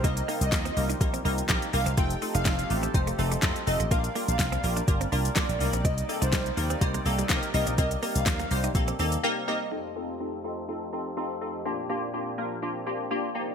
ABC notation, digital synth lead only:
X:1
M:4/4
L:1/16
Q:1/4=124
K:Cdor
V:1 name="Digital synth lead"
e z2 e3 z8 f z | g z2 f3 z8 e z | f z2 f3 z6 d3 z | e z2 c3 z8 e z |
e z2 f3 z8 e z | z16 | z16 |]